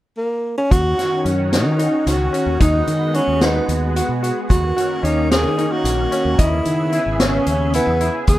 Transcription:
0.18 tenor saxophone A#3
0.58 tenor saxophone C#4
0.70 fingered electric bass D#2, analog synth pad D#3 C#4 F#4, tenor saxophone F#4, kick, closed hi-hat
0.98 grand piano F#4, snare, closed hi-hat
1.24 fingered electric bass F#2, grand piano C#4, closed hi-hat
1.53 tenor saxophone D#4, snare, closed hi-hat
1.66 fingered electric bass D#3
1.79 grand piano D#4, closed hi-hat
2.07 fingered electric bass C#2, tenor saxophone F#4, snare, closed hi-hat
2.33 grand piano C#4, closed hi-hat
2.46 fingered electric bass D#2
2.58 fingered electric bass D#2, analog synth pad G#3 B3 F#4, grand piano D#4, tenor saxophone D#4, kick, closed hi-hat
2.87 fingered electric bass D#3, closed hi-hat
3.14 tenor saxophone C#4, grand piano F#4, closed hi-hat
3.28 fingered electric bass D#2
3.41 tenor saxophone B3, grand piano D#4, snare, closed hi-hat
3.68 fingered electric bass D#2, closed hi-hat
3.96 grand piano F#4, closed hi-hat
4.09 fingered electric bass B2
4.23 grand piano F#4, closed hi-hat
4.48 fingered electric bass D#2, analog synth pad D#3 A#3 C#4, tenor saxophone F#4, kick, closed hi-hat
4.76 grand piano F#4, closed hi-hat
5.03 fingered electric bass D#2, grand piano C#4, tenor saxophone D#4, closed hi-hat
5.31 tenor saxophone G#4, snare, closed hi-hat
5.44 fingered electric bass D#3
5.58 grand piano D#4, closed hi-hat
5.72 tenor saxophone F#4
5.84 fingered electric bass A#1, closed hi-hat
6.12 grand piano C#4, closed hi-hat
6.25 fingered electric bass D#2
6.38 fingered electric bass D#2, analog synth pad C#3 B3 G#4 E5, tenor saxophone E4, grand piano D#5, kick, closed hi-hat
6.65 fingered electric bass D#3, closed hi-hat
6.92 grand piano E4, closed hi-hat
7.06 fingered electric bass G#1
7.20 grand piano C#4, tenor saxophone C#4, snare, closed hi-hat
7.46 fingered electric bass D#2, closed hi-hat
7.74 tenor saxophone B3, grand piano E4, closed hi-hat
7.87 fingered electric bass E2
8.01 grand piano E4, closed hi-hat
8.27 fingered electric bass D#2, analog synth pad D#3 C#4 F#4, tenor saxophone G#4, kick, closed hi-hat

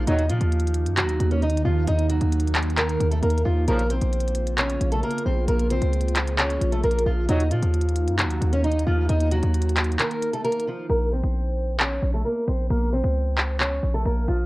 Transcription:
Already playing: ambient pad A#3
0.07 808-style bass D#2, brass ensemble A#2 D#3 F#3, ambient pad D#3 D#4, steel-string acoustic guitar D#4 D#5, closed hi-hat
0.18 closed hi-hat
0.29 808-style bass A#2, steel-string acoustic guitar F3 F4, closed hi-hat
0.41 808-style bass D#2, closed hi-hat
0.52 closed hi-hat
0.60 closed hi-hat
0.67 closed hi-hat
0.74 closed hi-hat
0.86 808-style bass F#2, closed hi-hat
0.97 steel-string acoustic guitar F#3 F#4, clap, closed hi-hat
1.03 808-style bass D#2
1.09 closed hi-hat
1.20 808-style bass D#2, closed hi-hat
1.31 steel-string acoustic guitar C#4 C#5, closed hi-hat
1.42 steel-string acoustic guitar D#4 D#5, closed hi-hat
1.50 closed hi-hat
1.57 closed hi-hat
1.65 808-style bass D#2, steel-string acoustic guitar F3 F4
1.87 808-style bass D#2, steel-string acoustic guitar D#4 D#5, closed hi-hat
1.99 closed hi-hat
2.10 steel-string acoustic guitar F#3 F#4, closed hi-hat
2.21 808-style bass D#2, closed hi-hat
2.32 closed hi-hat
2.40 closed hi-hat
2.48 closed hi-hat
2.55 clap, closed hi-hat, open hi-hat
2.63 closed hi-hat
2.70 closed hi-hat
2.78 steel-string acoustic guitar A#3 A#4, clap, closed hi-hat
2.89 closed hi-hat
3.00 808-style bass D#2, closed hi-hat
3.11 steel-string acoustic guitar A3 A4, closed hi-hat
3.23 808-style bass D#2, steel-string acoustic guitar A#3 A#4, closed hi-hat
3.30 closed hi-hat
3.38 closed hi-hat
3.45 808-style bass D#2, steel-string acoustic guitar F3 F4
3.68 808-style bass A#1, brass ensemble A#2 C#3 F3, ambient pad C#3 F4, steel-string acoustic guitar A#3 A#4, closed hi-hat
3.79 closed hi-hat
3.90 steel-string acoustic guitar C4 C5, closed hi-hat
4.01 808-style bass A#1, closed hi-hat
4.13 closed hi-hat
4.20 closed hi-hat
4.28 closed hi-hat
4.35 closed hi-hat
4.47 closed hi-hat
4.58 steel-string acoustic guitar C#4 C#5, clap, closed hi-hat
4.70 closed hi-hat
4.81 808-style bass A#1, closed hi-hat
4.92 steel-string acoustic guitar A3 A4, closed hi-hat
5.03 steel-string acoustic guitar A#3 A#4, closed hi-hat
5.11 closed hi-hat
5.18 closed hi-hat
5.26 808-style bass A#1, steel-string acoustic guitar C4 C5
5.48 808-style bass A#1, steel-string acoustic guitar A#3 A#4, closed hi-hat
5.60 closed hi-hat
5.71 steel-string acoustic guitar C4 C5, closed hi-hat
5.82 808-style bass C#2, closed hi-hat
5.93 closed hi-hat
6.01 closed hi-hat
6.08 closed hi-hat
6.16 clap, closed hi-hat
6.27 closed hi-hat
6.38 steel-string acoustic guitar C#4 C#5, clap, closed hi-hat
6.50 closed hi-hat
6.61 808-style bass A#1, closed hi-hat
6.72 steel-string acoustic guitar A3 A4, closed hi-hat
6.84 808-style bass A#1, steel-string acoustic guitar A#3 A#4, closed hi-hat
6.91 closed hi-hat
6.99 closed hi-hat
7.06 808-style bass A#1, steel-string acoustic guitar F3 F4
7.29 808-style bass D#2, brass ensemble A#2 D#3 F#3, ambient pad D#3 A#3 D#4, steel-string acoustic guitar D#4 D#5, closed hi-hat
7.40 closed hi-hat
7.51 808-style bass A#2, steel-string acoustic guitar F3 F4, closed hi-hat
7.63 808-style bass D#2, closed hi-hat
7.74 closed hi-hat
7.81 closed hi-hat
7.89 closed hi-hat
7.96 closed hi-hat
8.08 808-style bass F#2, closed hi-hat
8.19 steel-string acoustic guitar F#3 F#4, clap, closed hi-hat
8.25 808-style bass D#2
8.31 closed hi-hat
8.41 808-style bass D#2, closed hi-hat
8.53 steel-string acoustic guitar C#4 C#5, closed hi-hat
8.64 steel-string acoustic guitar D#4 D#5, closed hi-hat
8.72 closed hi-hat
8.79 closed hi-hat
8.86 808-style bass D#2, steel-string acoustic guitar F3 F4
9.09 808-style bass D#2, steel-string acoustic guitar D#4 D#5, closed hi-hat
9.20 closed hi-hat
9.32 steel-string acoustic guitar F#3 F#4, closed hi-hat
9.43 808-style bass D#2, closed hi-hat
9.54 closed hi-hat
9.62 closed hi-hat
9.69 closed hi-hat
9.76 clap, closed hi-hat, open hi-hat
9.84 closed hi-hat
9.92 closed hi-hat
9.99 steel-string acoustic guitar A#3 A#4, clap, closed hi-hat
10.11 closed hi-hat
10.22 closed hi-hat
10.33 steel-string acoustic guitar A3 A4, closed hi-hat
10.44 steel-string acoustic guitar A#3 A#4, closed hi-hat
10.52 closed hi-hat
10.60 closed hi-hat
10.67 steel-string acoustic guitar F3 F4
10.90 808-style bass A#1, steel-string acoustic guitar A#3 A#4
11.12 steel-string acoustic guitar C4 C5
11.23 808-style bass A#1
11.80 steel-string acoustic guitar C#4 C#5, clap
12.02 808-style bass A#1
12.14 steel-string acoustic guitar A3 A4
12.25 steel-string acoustic guitar A#3 A#4
12.48 808-style bass A#1, steel-string acoustic guitar C4 C5
12.70 808-style bass A#1, steel-string acoustic guitar A#3 A#4
12.93 steel-string acoustic guitar C4 C5
13.04 808-style bass C#2
13.38 clap
13.60 steel-string acoustic guitar C#4 C#5, clap
13.83 808-style bass A#1
13.94 steel-string acoustic guitar A3 A4
14.05 808-style bass A#1, steel-string acoustic guitar A#3 A#4
14.28 808-style bass A#1, steel-string acoustic guitar F3 F4

